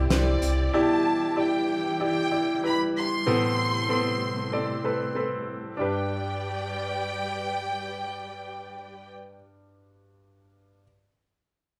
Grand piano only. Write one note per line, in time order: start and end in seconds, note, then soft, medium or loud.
0.00 0.76 G2 medium
0.00 0.10 E4 medium
0.00 0.10 G4 medium
0.00 0.11 C5 medium
0.00 0.74 D5 medium
0.10 0.63 E4 medium
0.10 0.64 G4 medium
0.10 0.64 C5 medium
0.74 1.65 B2 medium
0.74 1.27 E4 medium
0.74 1.27 G4 medium
0.74 1.27 D5 loud
1.36 1.90 E4 medium
1.36 1.90 G4 medium
1.36 1.90 D5 medium
2.00 2.27 E4 medium
2.00 2.27 G4 medium
2.00 2.27 D5 medium
2.31 2.58 E4 medium
2.31 2.58 G4 soft
2.31 2.58 D5 medium
2.63 3.16 E4 medium
2.63 3.16 G4 soft
2.63 3.17 B4 medium
3.26 4.17 A2 medium
3.26 4.17 E3 medium
3.26 3.80 B3 medium
3.26 3.80 C4 medium
3.26 3.80 A4 medium
3.89 4.43 B3 medium
3.89 4.42 C4 medium
3.89 4.43 A4 medium
4.52 4.79 C4 medium
4.52 4.79 A4 medium
4.52 4.80 D5 medium
4.84 5.11 C4 medium
4.84 5.11 A4 medium
4.84 5.11 B4 medium
5.15 5.69 C4 medium
5.15 5.69 A4 medium
5.15 5.69 B4 medium
5.77 9.36 G2 medium
5.77 9.33 D4 medium
5.77 9.35 G4 medium
5.81 9.38 B4 medium